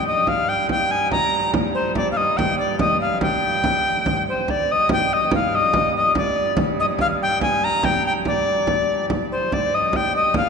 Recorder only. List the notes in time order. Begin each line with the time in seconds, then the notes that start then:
0.07 D#5
0.28 F5
0.49 G5
0.71 G5
0.91 G#5
1.12 A#5
1.75 C5
1.96 D5
2.12 F5
2.17 D#5
2.37 G5
2.59 D5
2.80 D#5
3.01 F5
3.22 G5
4.29 C5
4.50 D5
4.72 D#5
4.93 G5
5.13 D#5
5.35 F5
5.55 D#5
5.96 D#5
6.17 D5
6.80 D#5
7.01 F5
7.23 G5
7.42 G#5
7.64 A#5
7.85 G5
8.07 G5
8.27 D5
9.32 C5
9.53 D5
9.75 D#5
9.96 G5
10.16 D#5
10.37 F5